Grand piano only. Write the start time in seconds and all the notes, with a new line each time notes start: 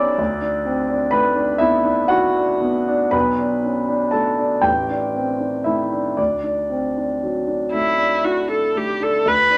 Already playing: B1 A3 B3 C#4 D4 D5 E5 D6 E6
0.18 D2
0.41 D4
0.65 C4
0.90 D4
1.11 A3 B4 B5
1.36 D4
1.58 B3 E4 E5
1.84 D4
2.08 E4 F#4 F#5
2.36 D4
2.61 B3
2.88 D4
3.11 B1 B4 B5
3.39 D4
3.63 C#4
3.88 D4
4.11 A3 A4 A5
4.38 D4
4.61 A1 G4 G5
4.90 D4
5.15 C4
5.40 D4
5.64 A3 E4 E5
5.92 D4
6.17 D2 D4 D5
6.43 D4
6.70 C4
6.97 D4
7.22 F#3
7.47 D4
7.73 A3
7.98 D4
8.23 E4
8.48 D4
8.76 A3
9.01 D4
9.25 D2
9.50 D4